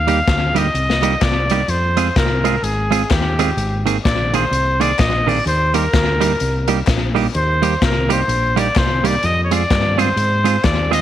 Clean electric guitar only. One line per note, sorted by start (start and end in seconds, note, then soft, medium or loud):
0.07 0.18 G3 medium
0.07 0.19 A#3 medium
0.07 0.19 D#4 medium
0.07 0.19 G4 loud
0.55 0.65 G3 medium
0.55 0.66 A#3 medium
0.55 0.66 D#4 loud
0.55 0.66 G4 loud
1.02 1.13 G3 medium
1.02 1.13 A#3 medium
1.02 1.13 D#4 loud
1.02 1.13 G4 loud
1.51 1.61 G3 medium
1.51 1.61 A#3 medium
1.51 1.61 D#4 medium
1.51 1.61 G4 loud
1.97 2.07 G#3 medium
1.97 2.07 C4 medium
1.97 2.07 F4 loud
1.97 2.08 G#4 medium
2.44 2.54 G#3 medium
2.44 2.55 C4 loud
2.44 2.55 F4 medium
2.44 2.55 G#4 loud
2.91 3.01 G#3 medium
2.91 3.02 C4 loud
2.91 3.02 F4 medium
2.91 3.02 G#4 loud
3.39 3.49 G#3 medium
3.39 3.49 C4 loud
3.39 3.50 F4 loud
3.39 3.50 G#4 loud
3.86 3.96 D#3 medium
3.86 3.96 A#3 medium
3.86 3.96 C4 medium
3.86 3.97 G#4 medium
4.33 4.44 D#3 medium
4.33 4.44 A#3 medium
4.33 4.44 C4 medium
4.33 4.44 G#4 loud
4.80 4.90 D#3 medium
4.80 4.91 A#3 medium
4.80 4.91 C4 medium
4.80 4.91 G#4 medium
5.27 5.37 D#3 medium
5.27 5.38 A#3 medium
5.27 5.38 C4 medium
5.27 5.38 G#4 medium
5.74 5.84 G3 medium
5.74 5.85 A#3 medium
5.74 5.85 D#4 medium
5.74 5.85 G4 medium
6.20 6.31 G3 loud
6.20 6.32 A#3 loud
6.20 6.31 D#4 loud
6.20 6.32 G4 loud
6.68 6.79 G3 loud
6.68 6.79 A#3 loud
6.68 6.79 D#4 medium
6.68 6.79 G4 loud
7.15 7.25 G3 medium
7.15 7.26 A#3 medium
7.15 7.26 D#4 loud
7.15 7.26 G4 medium
7.62 7.73 G3 medium
7.62 7.73 A#3 medium
7.62 7.73 D#4 medium
7.62 7.73 G4 medium
8.09 8.20 G3 medium
8.09 8.20 A#3 medium
8.09 8.20 D#4 loud
8.09 8.20 G4 loud
8.56 8.67 G3 loud
8.56 8.67 A#3 loud
8.56 8.67 D#4 loud
8.56 8.67 G4 loud
9.04 9.14 G3 loud
9.04 9.14 A#3 loud
9.04 9.14 D#4 medium
9.04 9.15 G4 loud
9.51 9.61 G#3 medium
9.51 9.62 C4 medium
9.51 9.62 F4 medium
9.51 9.62 G#4 medium
9.98 10.08 G#3 medium
9.98 10.08 C4 loud
9.98 10.08 F4 loud
9.98 10.09 G#4 loud
10.44 10.55 G#3 loud
10.44 10.55 C4 medium
10.44 10.56 F4 loud
10.44 10.56 G#4 loud
10.91 11.02 G#3 medium
10.91 11.02 C4 medium
10.91 11.02 F4 medium
10.91 11.02 G#4 medium